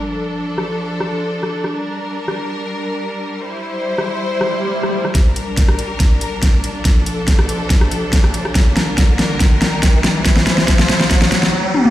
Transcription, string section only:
Already playing: D4
0.04 F3 A4
1.74 G3 A#4
3.45 E4 C5
5.15 G3 D4 A#4
6.85 F3 A4
8.55 G3 A#4
10.25 E4 C5

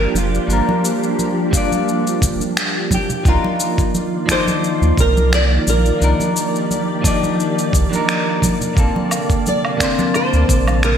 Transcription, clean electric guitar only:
Already playing: G3 D4 F4 D5
0.47 G3 D4 F4
0.53 A#4
1.51 G3 D4 F4
1.57 D5
3.23 F3 D4
3.28 D#4 A#4
4.26 F3 D4 D#4
4.31 D5
5.99 F3 D4 D#4
6.04 A#4
7.02 F3 D4
7.06 D#4 D5
7.90 F3 D4
7.94 D#4 A#4
8.73 D3 A#3 C4
8.79 A4
9.77 D3 A#3 C4
9.83 C5

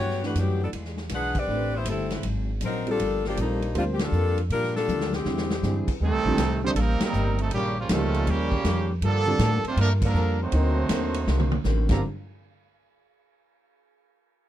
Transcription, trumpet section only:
6.04 G3 C4 D#4 A4
6.67 A3 D#4 G4 C5
6.77 A4 A#4
6.81 G3 C4 D#4
7.05 G3 C4 D#4 A#4
7.43 G3 C4 D#4 A4
7.55 A#3 C#4 G4
7.80 G3 A#3 C#4 F4
7.92 G3 C#4 F4 A4
8.30 A#3 C#4 G4
9.05 A#3 D4 A4
9.68 A3 D4 F4 C5
9.81 A3 D4 A#4
10.06 D4 A4 A#4
10.42 A3 D#4 F#4 C5
11.91 F4 A4 D5 A#5

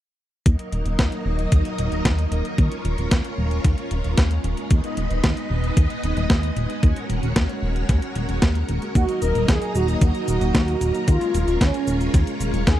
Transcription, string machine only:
0.45 F#3 A#3 D#4 A#4 D#5
2.58 G#3 C#4 F4 C#5
4.70 B3 D#4 B4 D#5
6.83 C#4 F#4 A#4 C#5
8.95 F#3 A#3 D#4 D#5
11.08 G#3 C#4 F4 C#5

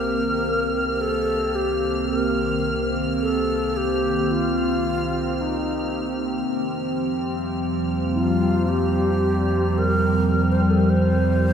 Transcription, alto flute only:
Already playing: A#4
1.01 A4
1.55 G4
2.10 A#4
3.22 A4
3.77 G4
4.31 F4
5.41 D#4
8.14 F4
8.68 G4
9.78 A#4
10.52 C5
10.62 A#4
10.70 A4
10.80 A#4
10.90 C5

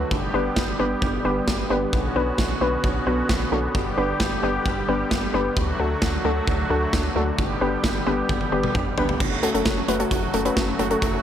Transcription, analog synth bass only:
0.11 G1
0.34 G1
0.57 G1
0.80 G1
1.02 G1
1.25 G1
1.48 G1
1.70 G1
1.93 B1
2.16 B1
2.38 B1
2.61 B1
2.84 B1
3.07 B1
3.29 B1
3.52 B1
3.75 G1
3.98 G1
4.20 G1
4.43 G1
4.66 G1
4.88 G1
5.11 G1
5.34 G1
5.57 D2
5.79 D2
6.02 D2
6.25 D2
6.48 D2
6.70 D2
6.93 D2
7.16 D2
7.38 G1
7.61 G1
7.84 G1
8.07 G1
8.29 G1
8.52 G1
8.75 G1
8.98 G1
9.20 F#1
9.54 F#1
9.66 F#1
9.89 F#1
10.11 F#1
10.34 F#1
10.57 F#1
10.79 F#1
11.02 F#1

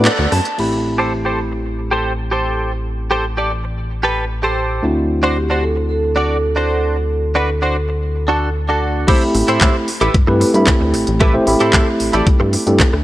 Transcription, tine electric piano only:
0.58 A3 C4 E4 G4 B5
4.83 A3 C4 D4 E4 F#4
9.07 A3 C4 E4 G4 B5
10.27 A3 C4 E4 G4 B4
10.54 A3 C4 E4 G4 B5
11.34 A3 C4 E4 G4 C5
11.46 A3 C4 E4 G4 B5
12.66 A3 C4 E4 G4 A4

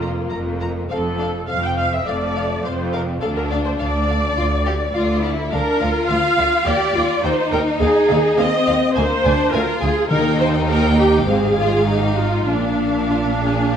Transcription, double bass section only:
Already playing: F1
0.32 F1
0.90 F1
1.48 F1
2.07 F1
2.65 F1
3.22 D2
3.80 D2
4.37 D2
4.95 D2
5.52 D2
5.82 D2
6.10 D2
6.39 D2
6.66 D#2
6.95 D#2
7.23 D#2
7.53 D#2
7.81 D#2
8.09 D#2
8.38 D#2
8.68 D#2
8.96 D2
9.25 D2
9.53 D2
9.82 D2
10.11 D#2
11.27 G#1
12.47 A#1

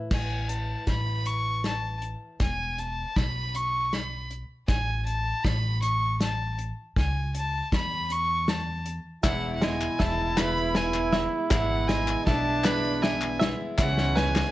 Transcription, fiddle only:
0.11 G#5
0.49 A5
0.89 B5
1.27 C#6
1.66 A5
2.42 G#5
2.79 A5
3.16 B5
3.55 C#6
3.93 B5
4.68 G#5
5.06 A5
5.44 B5
5.82 C#6
6.21 A5
6.97 G#5
7.36 A5
7.74 B5
8.12 C#6
8.49 A5
9.25 F#5
9.55 F#5
9.63 G#5
10.01 A5
10.38 B5
10.76 G#5
11.51 F#5
11.88 G#5
12.26 A5
12.65 B5
13.02 G#5
13.80 F#5
14.17 G#5

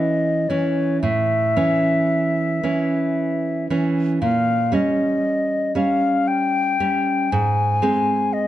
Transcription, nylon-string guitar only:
Already playing: E3 C#4
0.50 E3 C#4
1.03 A2
1.56 E3 C#4
2.63 E3 C#4
3.70 E3 C#4
4.22 A#2
4.72 G3 C#4
5.75 G3 C#4
6.80 G3 C#4
7.32 G#2
7.82 G#3 C4

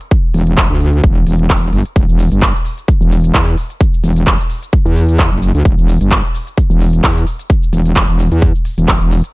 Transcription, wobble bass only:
0.34 E1
0.70 D2
1.04 E1
1.27 E1
1.73 G1
1.96 E1
2.09 E1
2.32 G1
3.01 E1
3.34 E2
4.04 E1
4.85 E2
5.32 F#1
5.55 D2
5.65 E1
5.78 E1
6.01 G1
6.70 E1
7.04 E2
7.73 E1
8.09 E1
8.32 E2
8.78 E1
9.01 E1

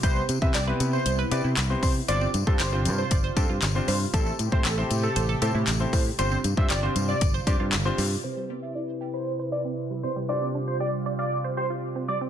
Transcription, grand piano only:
0.03 B3 C4 E4 G4 B4
0.42 B3 C4 E4 G4 B4
0.67 B3 C4 E4 G4 B4
1.31 B3 C4 E4 G4 B4
1.70 B3 C4 E4 G4 C5
2.08 C4 D4 F4 G4 C5
2.47 C4 D4 F4 G4 C5
2.72 C4 D4 F4 G4 C5
3.36 C4 D4 F4 G4 C5
3.75 C4 D4 F4 G4 C5
4.13 C4 E4 G4 A4 C5
4.52 C4 E4 G4 A4 C5
4.77 C4 E4 G4 A4 C5
5.42 C4 E4 G4 A4 C5
5.80 C4 E4 G4 A4 C5
6.18 C4 D4 F4 G4 C5
6.57 C4 D4 F4 G4 C5
6.83 C4 D4 F4 G4 C5
7.47 C4 D4 F4 G4 C5
7.85 C4 D4 F4 G4 C5
8.23 C4 E4 G4 B4
10.29 D4 F4 G4 C5

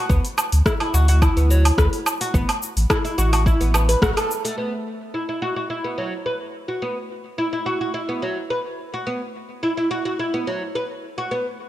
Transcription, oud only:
0.10 B3
0.66 E4
0.81 E4
0.94 F#4
1.09 F#4
1.22 E4
1.37 B3
1.50 F#3
1.78 B4
2.21 F#4
2.34 B3
2.90 E4
3.04 E4
3.18 F#4
3.33 F#4
3.46 E4
3.61 B3
3.74 B3
3.89 B4
4.02 F#4
4.17 A4
4.45 A3
4.58 B3
5.14 E4
5.29 E4
5.42 F#4
5.56 F#4
5.70 E4
5.84 B3
5.98 F#3
6.26 B4
6.68 F#4
6.82 B3
7.38 E4
7.53 E4
7.66 F#4
7.81 F#4
7.94 E4
8.09 B3
8.22 F#3
8.50 B4
8.94 F#4
9.07 B3
9.63 E4
9.77 E4
9.91 F#4
10.05 F#4
10.19 E4
10.34 B3
10.47 F#3
10.75 B4
11.18 F#4
11.31 B3

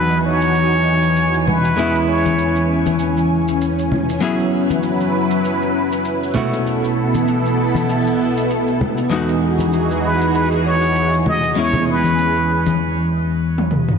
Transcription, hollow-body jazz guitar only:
Already playing: E2 F#3 B3 D#4 F#4
1.75 E2 G#3 B3 C#4 E4
4.20 F#3 B3 C#4 E4 G#4
6.34 B2 A3 C#4 E4 F#4
9.09 E2 G#3 B3 D#4 F#4
11.54 E2 G#3 B3 C#4 E4

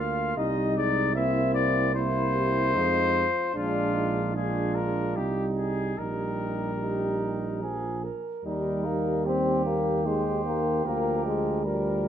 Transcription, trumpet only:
Already playing: F5
0.37 D#5
0.77 D5
1.15 E5
1.54 D5
1.95 C5
3.55 F4
4.35 G#4
4.75 A#4
5.16 G4
5.57 G#4
5.98 A#4
8.45 A#4
9.26 G4
10.05 C5
10.85 A#4
11.65 A#4

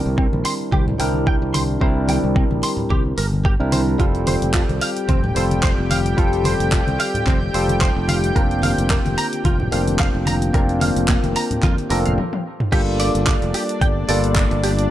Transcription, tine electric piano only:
Already playing: G3 C4 D4 E4 A#4
0.99 G3 C4 D4 E4 A#4
1.80 G3 C4 D4 E4 A#4
3.59 G3 C4 D4 E4 A#4
3.98 G3 C4 F4 A4
5.35 G3 C4 F4 A4
6.17 G3 C4 F4 A4
7.53 G3 C4 F4 A4
8.35 A#3 C4 D4 F4
9.72 A#3 C4 D4 F4
10.53 A#3 C4 D4 F4
11.90 A#3 C4 D4 F4 A4
12.72 G3 A#3 D4 F4 A4
14.08 G3 A#3 D4 F4 A4

